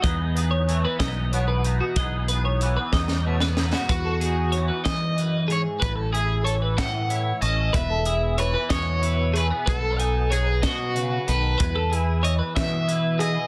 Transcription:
<<
  \new Staff \with { instrumentName = "Clean electric guitar" } { \time 6/8 \key e \major \tempo 4. = 62 dis''8 b'16 cis''8 b'16 dis''8 cis''16 b'8 fis'16 | dis''8 b'16 cis''8 b'16 dis''8 cis''16 b'8 fis'16 | b'16 a'16 gis'8 cis''16 b'16 dis''8 b'8 gis'8 | b'16 a'16 gis'8 cis''16 b'16 dis''8 cis''8 a'8 |
b'16 a'16 gis'8 cis''16 b'16 dis''8 b'8 gis'8 | b'16 a'16 gis''8 cis''16 b'16 dis''8 b'8 a'8 | b'16 a'16 gis'8 cis''16 b'16 e''8 b'8 gis'8 | }
  \new Staff \with { instrumentName = "Overdriven electric guitar" } { \time 6/8 \key e \major r2. | r2. | fis'4. dis''4 cis''8 | b'8 gis'8 a'8 fis''4 dis''8 |
e''4 b'8 cis''4 b'8 | a'4 gis'8 fis'4 b'8~ | b'4 dis''8 e''4 dis''8 | }
  \new Staff \with { instrumentName = "Clean electric guitar" } { \time 6/8 \key e \major << { <b dis' gis'>8 dis'8 a16 b16 dis'8 b8 dis'8 | <b dis' gis'>8 dis'8 b8 dis'8 a16 b16 dis'8 | r8 dis'2~ dis'8 | r8 e'4. e'8 cis'8 |
r8 e'4. e'8 a16 b16 | r8 dis'2~ dis'8 | r8 e'4. e'8 b8 | } \\ { e,4 e4 b,4 | e,4 e4 b,4 | e,4 e8 e,8 fis,8 gis,8 | a,4 e8 e4. |
e,4 e8 b,4. | b,4 fis8 b,8 cis8 dis8 | e,4 e8 b,4. | } >> }
  \new Staff \with { instrumentName = "Fingered electric bass" } { \clef bass \time 6/8 \key e \major e,4. b,,4. | b,,4. e,4. | e,4. e4. | a,,4. a,4 a,,8 |
e,,4. e,4. | b,,4. b,4 b,,8 | e,4. e4. | }
  \new DrumStaff \with { instrumentName = "Drums" } \drummode { \time 6/8 <hh bd>8 hh8 hh8 <hh bd sn>8 hh8 hh8 | <hh bd>8 hh8 hh8 <bd sn>16 sn8 sn16 sn16 sn16 | <hh bd>8 hh8 hh8 <hh bd sn>8 hh8 hh8 | <hh bd>8 hh8 hh8 <hh bd sn>8 hh8 hh8 |
<hh bd>8 hh8 hh8 <hh bd sn>8 hh8 hh8 | <hh bd>8 hh8 hh8 <hh bd sn>8 hh8 hh8 | <hh bd>8 hh8 hh8 <hh bd sn>8 hh8 hh8 | }
>>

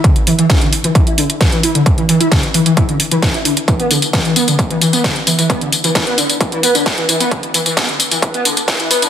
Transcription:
<<
  \new Staff \with { instrumentName = "Analog synth lead" } { \clef bass \time 4/4 \key c \major \tempo 4 = 132 d16 r16 e16 e16 e'16 d16 r16 e16 e16 e'16 d16 r16 e16 e16 e'16 d16 | r16 e16 e16 e'16 d16 r16 e16 e16 e'16 d16 r16 e16 e16 e'16 d16 r16 | e16 b16 d16 r16 e16 e16 b16 d16 r16 e16 e16 b16 d16 r16 e16 e16 | b16 d16 r16 e16 e16 b16 d16 r16 e16 e16 b16 d16 r16 e16 e16 b16 |
d16 r16 e16 e16 b16 d16 r16 e16 e16 b16 d16 r16 e16 e16 b16 d16 | }
  \new DrumStaff \with { instrumentName = "Drums" } \drummode { \time 4/4 <hh bd>16 hh16 hho16 hh16 <hh bd sn>16 hh16 hho16 hh16 <hh bd>16 hh16 hho16 hh16 <hh bd sn>16 hh16 hho16 hh16 | <hh bd>16 hh16 hho16 hh16 <hh bd sn>16 hh16 hho16 hh16 <hh bd>16 hh16 hho16 hh16 <hh bd sn>16 hh16 hho16 hh16 | <hh bd tamb>16 hh16 <hho tamb>16 <hh tamb>16 <hh bd sn>16 hh16 <hho tamb>16 <hh tamb>16 <hh bd tamb>16 hh16 <hho tamb>16 <hh tamb>16 <hh bd sn tamb>16 hh16 <hho tamb>16 <hh tamb>16 | <hh bd>16 hh16 <hho tamb>16 <hh tamb>16 <hh bd sn tamb>16 hh16 <hho tamb>16 <hh tamb>16 <hh bd tamb>16 hh16 <hho tamb>16 <hh tamb>16 <hh bd sn>16 hh16 <hho tamb>16 <hh tamb>16 |
<hh bd tamb>16 hh16 <hho tamb>16 <hh tamb>16 <hh bd sn>16 hh16 <hho tamb>16 <hh tamb>16 <hh bd tamb>16 hh16 <hho tamb>16 <hh tamb>16 <hh bd sn>16 hh16 <hho tamb>16 <hh tamb>16 | }
>>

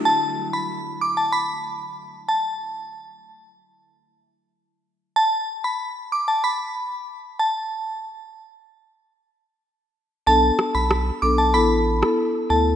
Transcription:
<<
  \new Staff \with { instrumentName = "Synth bell" } { \time 4/4 \key b \minor \tempo 4 = 94 a''16 r8 b''16 r8 d'''16 a''16 b''8. r8. a''16 r16 | r1 | a''16 r8 b''16 r8 d'''16 a''16 b''8. r8. a''16 r16 | r1 |
a''16 r8 b''16 r8 d'''16 a''16 b''8. r8. a''16 r16 | }
  \new Staff \with { instrumentName = "Marimba" } { \time 4/4 \key b \minor r1 | r1 | r1 | r1 |
<b d' a'>4. <b d' a'>8 <b e' a'>16 r8 <b e' a'>16 r8 <b e' a'>16 r16 | }
  \new Staff \with { instrumentName = "Sub bass" } { \clef bass \time 4/4 \key b \minor r1 | r1 | r1 | r1 |
b,,8 r16 b,,8. b,,8 a,,4 r8 d,8 | }
  \new DrumStaff \with { instrumentName = "Drums" } \drummode { \time 4/4 r4 r4 r4 r4 | r4 r4 r4 r4 | r4 r4 r4 r4 | r4 r4 r4 r4 |
r8 ss8 ss4 r8. ss16 r4 | }
>>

